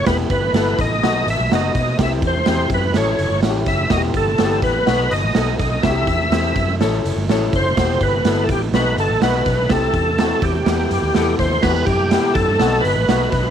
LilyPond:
<<
  \new Staff \with { instrumentName = "Tonewheel organ" } { \time 4/4 \key e \minor \tempo 4 = 124 b'8 b'4 dis''4 e''8 dis''4 | e''8 c''4 b'8 cis''4 r8 e''8 | dis''8 a'4 b'4 dis''4 dis''8 | e''2 r4. c''8~ |
c''8 b'8.~ b'32 a'32 g'8 b'8 a'8 b'4 | a'4. g'2 c''8 | b'8 g'4 a'4 b'4 b'8 | }
  \new Staff \with { instrumentName = "Grand piano" } { \time 4/4 \key e \minor <b e' g'>8 r8 <b e' a'>8 r8 <b dis' fis'>8 r8 <b dis' fis'>8 r8 | <c' dis' e' g'>8 r8 <c' e' g'>8 r8 <cis' e' a'>8 r8 <cis' e' fis' g'>8 r8 | <b e' fis' g'>8 r8 <b e' fis' g'>8 r8 <b dis' fis'>8 r8 <b dis' a'>8 r8 | <c' e' fis' g'>8 r8 <c' e' g'>8 r8 <cis' e' a'>8 r8 <cis' e' a'>8 r8 |
<b e' fis' g'>8 r8 <b e' a'>8 r8 <b c' dis' fis'>8 r8 <b dis' fis'>8 r8 | <c' e' g'>8 r8 <c' e' fis'>8 r8 <b e' g'>8 r8 <b e' a'>8 r8 | <b e' fis' g'>8 r8 <b e' g'>8 r8 <b c' dis' fis'>8 r8 <b dis' fis'>8 r8 | }
  \new Staff \with { instrumentName = "Fingered electric bass" } { \clef bass \time 4/4 \key e \minor e,,8 g,,8 g,,8 a,,8 b,,8 a,,16 b,,16 fis,,8 b,8 | c,8 e,8 e,8 fis,8 a,,8 fis,,16 g,,16 a,,8 fis,,8 | e,,8 g,,8 g,,8 a,,8 b,,8 g,,16 a,,16 b,,8 b,,8 | c,8 e,8 e,8 fis,8 a,,8 fis,,16 g,,16 a,,8 fis,,8 |
e,,8 g,,8 g,,8 a,,8 b,,8 g,,16 a,,16 b,,8 b,,8 | c,8 e,4 e,8 e,8 fis,16 dis,16 e,8 dis,8 | e,8 fis,8. r16 fis,16 g,16 b,,8 g,,16 a,,16 b,,8 b,,8 | }
  \new DrumStaff \with { instrumentName = "Drums" } \drummode { \time 4/4 <hh bd sn>8 <hh bd>8 <hh sn>8 <hh bd>8 <hh sn>8 hh8 <hh sn>8 <hh bd sn>8 | <hh bd sn>8 <hh bd>8 <hh sn>8 <hh bd>8 <hh sn>8 hh8 <hh sn>8 <hh bd sn>8 | <hh bd sn>8 <hh bd>8 <hh sn>8 <hh bd>8 <hh sn>8 hh8 <hh sn>8 <hh bd sn>8 | <hh bd sn>8 <hh bd>8 <hh sn>8 <hh bd>8 <hh sn>8 hh8 <hh sn>8 <hh bd>8 |
<hh bd sn>8 <hh bd>8 <hh sn>8 <hh bd>8 <hh sn>8 hh8 <hh sn>8 <hh bd sn>8 | <hh bd sn>8 <hh bd>8 <hh sn>8 <hh bd>8 <hh sn>8 hh8 <hh sn>8 <hh bd sn>8 | <cymc bd sn>8 <hh bd>8 <hh sn>8 <hh bd>8 <hh sn>8 hh8 <hh sn>8 <hh bd sn>8 | }
>>